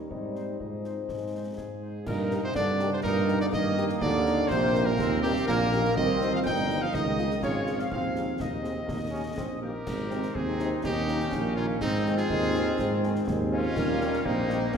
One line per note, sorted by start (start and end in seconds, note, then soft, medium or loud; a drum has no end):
0.10 0.54 G#2 soft
0.10 0.57 G3 soft
0.10 0.58 C4 soft
0.10 0.47 C4 soft
0.10 0.56 D#4 soft
0.10 0.56 C5 soft
0.10 0.56 D#5 soft
0.10 concert bass drum medium
0.36 0.44 D#4 soft
0.36 0.44 C5 soft
0.36 snare soft
0.59 1.03 G#2 soft
0.59 1.82 G#3 soft
0.59 1.78 C4 soft
0.59 1.78 D#4 soft
0.59 1.10 F4 soft
0.59 1.78 C5 soft
0.59 1.54 D#5 soft
0.59 concert bass drum soft
0.84 0.94 D#4 soft
0.84 0.94 C5 soft
0.84 snare soft
1.08 1.51 G#2 soft
1.08 1.56 D#4 soft
1.08 concert bass drum medium
1.08 snare soft
1.35 1.43 D#4 soft
1.35 1.43 C5 soft
1.57 2.03 G#2 medium
1.57 2.00 G#2 soft
1.57 2.08 G#4 medium
1.57 2.03 G#4 medium
1.57 concert bass drum medium
1.57 snare soft
1.83 1.91 D#4 soft
1.83 1.92 C5 soft
2.05 2.42 G2 medium
2.05 2.41 A#2 medium
2.05 2.51 D#4 medium
2.05 2.43 A#4 loud
2.05 2.41 A#4 medium
2.05 concert bass drum medium
2.05 crash medium
2.30 2.39 D#4 medium
2.30 2.39 G4 medium
2.30 2.39 A#4 medium
2.30 snare medium
2.44 2.55 C3 medium
2.44 2.55 C5 loud
2.44 2.56 C5 loud
2.54 2.96 G2 medium
2.54 2.95 D3 loud
2.54 3.00 D4 medium
2.54 2.89 D5 loud
2.54 2.90 D5 loud
2.54 concert bass drum medium
2.54 snare medium
2.79 2.88 D#4 medium
2.79 2.88 G4 medium
2.79 2.88 A#4 medium
2.79 snare medium
2.93 3.04 C3 medium
2.93 2.98 C5 loud
2.93 2.99 C5 loud
3.03 3.44 G2 loud
3.03 3.38 A#2 loud
3.03 3.49 D#4 loud
3.03 3.37 A#4 loud
3.03 3.38 A#4 loud
3.03 concert bass drum medium
3.03 snare medium
3.28 3.37 D#4 medium
3.28 3.37 G4 medium
3.28 3.37 A#4 medium
3.28 snare medium
3.41 3.47 D3 loud
3.41 3.46 D5 loud
3.41 3.53 D5 loud
3.41 snare medium
3.51 3.93 G2 loud
3.51 3.99 D#3 loud
3.51 4.98 A#3 loud
3.51 3.88 D#5 loud
3.51 3.99 D#5 loud
3.51 concert bass drum medium
3.51 snare medium
3.77 3.86 D#4 medium
3.77 3.86 G4 medium
3.77 3.86 A#4 medium
3.77 snare medium
3.89 snare medium
4.01 4.42 D#2 loud
4.01 4.47 D3 loud
4.01 4.50 D5 loud
4.01 4.51 D5 loud
4.01 concert bass drum medium
4.01 crash soft
4.26 4.35 D#4 medium
4.26 4.35 G4 medium
4.26 4.35 A#4 medium
4.26 snare medium
4.49 4.91 A#1 loud
4.49 4.89 C3 loud
4.49 4.87 C5 loud
4.49 4.84 C5 loud
4.49 concert bass drum medium
4.49 snare medium
4.73 4.83 D#4 medium
4.73 4.83 G4 medium
4.73 4.83 A#4 medium
4.73 snare medium
4.85 5.23 A#2 loud
4.85 5.22 A#4 loud
4.85 5.23 A#4 loud
4.98 5.39 D#2 loud
4.98 5.45 C4 loud
4.98 concert bass drum medium
4.98 snare medium
5.22 5.35 G2 loud
5.22 5.32 D#4 medium
5.22 5.45 G4 loud
5.22 5.46 G4 loud
5.22 5.32 G4 medium
5.22 5.32 A#4 medium
5.22 snare medium
5.36 snare medium
5.46 5.88 A#1 loud
5.46 5.93 A#2 loud
5.46 5.93 A#3 loud
5.46 5.92 A#4 loud
5.46 5.93 A#4 loud
5.46 concert bass drum medium
5.46 snare medium
5.72 5.81 D#4 medium
5.72 5.81 G4 medium
5.72 5.81 A#4 medium
5.72 snare medium
5.85 snare medium
5.95 6.37 C2 loud
5.95 6.34 D#3 loud
5.95 6.46 C4 loud
5.95 6.32 D#5 loud
5.95 6.31 D#5 loud
5.95 concert bass drum medium
5.95 crash soft
6.21 6.30 D#4 medium
6.21 6.30 G4 medium
6.21 6.30 C5 medium
6.21 snare medium
6.32 6.46 F3 loud
6.32 6.38 F5 loud
6.32 6.40 F5 loud
6.44 6.86 G1 loud
6.44 6.81 G3 loud
6.44 7.39 D#4 loud
6.44 6.79 G5 loud
6.44 6.84 G5 loud
6.44 concert bass drum medium
6.44 snare medium
6.69 6.78 D#4 medium
6.69 6.78 G4 medium
6.69 6.78 C5 medium
6.69 snare medium
6.82 6.87 F3 loud
6.82 6.87 F5 medium
6.82 6.96 F5 loud
6.92 7.35 C#2 medium
6.92 7.39 D#3 loud
6.92 7.39 D#5 loud
6.92 7.43 D#5 loud
6.92 concert bass drum medium
6.92 snare medium
7.18 7.27 F4 medium
7.18 7.27 G#4 medium
7.18 snare medium
7.31 snare medium
7.42 7.83 G#1 medium
7.42 7.81 C#3 loud
7.42 7.88 F4 medium
7.42 7.77 C#5 medium
7.42 7.83 C#5 loud
7.42 concert bass drum medium
7.42 snare medium
7.67 7.76 F4 medium
7.67 7.76 G#4 medium
7.67 snare medium
7.79 7.90 F3 medium
7.79 7.85 F5 medium
7.79 7.92 F5 medium
7.79 snare medium
7.91 8.32 D#2 medium
7.91 8.37 F3 medium
7.91 8.33 C4 medium
7.91 8.27 F5 medium
7.91 8.43 F5 loud
7.91 concert bass drum medium
7.91 crash soft
8.16 8.25 C4 medium
8.16 8.25 D#4 medium
8.16 8.25 G#4 medium
8.16 snare medium
8.40 8.81 D#2 medium
8.40 9.58 D#3 medium
8.40 8.63 D#4 medium
8.40 9.58 D#5 medium
8.40 9.62 D#5 medium
8.40 concert bass drum medium
8.40 snare medium
8.62 8.88 C4 medium
8.62 8.73 C4 soft
8.62 8.73 D#4 soft
8.62 8.73 G#4 medium
8.62 snare medium
8.86 9.29 D#2 medium
8.86 8.97 A#3 medium
8.86 concert bass drum medium
8.86 snare medium
9.11 9.22 A#3 medium
9.11 9.22 C#4 medium
9.11 9.22 D#4 medium
9.11 9.22 G4 medium
9.36 9.74 A#1 medium
9.36 9.60 C4 medium
9.36 concert bass drum medium
9.36 snare medium
9.60 9.72 A#3 medium
9.60 9.71 A#3 medium
9.60 9.71 D#4 medium
9.60 10.31 G4 medium
9.60 9.71 G4 medium
9.60 10.36 A#4 medium
9.87 10.27 G#1 medium
9.87 11.78 D#3 medium
9.87 10.80 C4 medium
9.87 concert bass drum medium
9.87 snare medium
9.87 crash medium
10.11 10.20 C3 medium
10.11 10.20 C4 medium
10.11 10.20 D#4 medium
10.11 snare medium
10.23 snare medium
10.34 10.76 D#2 loud
10.34 10.84 C4 loud
10.34 10.83 D#4 loud
10.34 10.70 G#4 loud
10.34 concert bass drum medium
10.60 10.69 C3 medium
10.60 10.69 C4 medium
10.60 10.69 D#4 medium
10.60 snare medium
10.83 11.24 D#2 loud
10.83 11.81 C#4 medium
10.83 11.35 D#4 loud
10.83 11.53 D#4 loud
10.83 11.54 G4 loud
10.83 concert bass drum medium
10.83 snare medium
11.08 11.17 D#3 medium
11.08 11.17 A#3 medium
11.08 11.17 C#4 medium
11.08 snare medium
11.21 snare medium
11.32 11.73 A#1 loud
11.32 11.82 A#3 medium
11.32 concert bass drum medium
11.32 snare medium
11.56 11.66 D#3 medium
11.56 11.66 A#3 medium
11.56 11.81 C#4 medium
11.56 11.66 C#4 medium
11.56 11.67 F4 loud
11.81 12.22 G#2 medium
11.81 13.73 D#3 loud
11.81 12.16 C4 loud
11.81 12.27 C4 loud
11.81 13.73 C4 loud
11.81 12.15 D#4 loud
11.81 concert bass drum medium
11.81 snare medium
11.81 crash soft
12.06 12.15 D#3 medium
12.06 12.14 G#3 medium
12.06 12.15 C4 medium
12.06 snare medium
12.17 13.23 F4 loud
12.17 13.23 G#4 loud
12.17 snare medium
12.30 12.71 D#2 loud
12.30 12.76 D#4 loud
12.30 concert bass drum medium
12.54 12.63 D#3 medium
12.54 12.63 G#3 medium
12.54 12.63 C4 medium
12.54 snare medium
12.79 13.20 G#2 loud
12.79 13.25 C4 loud
12.79 concert bass drum medium
12.79 snare medium
13.03 13.12 D#3 medium
13.03 13.12 G#3 medium
13.03 13.12 C4 medium
13.03 snare medium
13.16 snare medium
13.27 13.69 D#2 loud
13.27 13.73 G#3 loud
13.27 concert bass drum medium
13.27 snare medium
13.52 13.61 D#3 medium
13.52 13.61 G#3 medium
13.52 13.61 C4 medium
13.52 14.21 C#4 loud
13.52 14.27 F4 loud
13.75 14.17 D#2 loud
13.75 14.70 G3 medium
13.75 14.70 A#3 loud
13.75 14.22 A#3 loud
13.75 concert bass drum medium
13.75 snare medium
13.75 crash soft
14.01 14.10 D#3 medium
14.01 14.10 G3 medium
14.01 14.10 A#3 medium
14.01 snare medium
14.13 snare medium
14.25 14.66 A#1 loud
14.25 14.72 A#3 loud
14.25 14.74 C4 loud
14.25 14.74 D#4 loud
14.25 concert bass drum medium
14.49 14.58 D#3 medium
14.49 14.58 G3 medium
14.49 14.58 A#3 medium
14.49 snare medium
14.73 14.77 F3 loud
14.73 14.77 G#3 loud
14.73 14.77 A#3 loud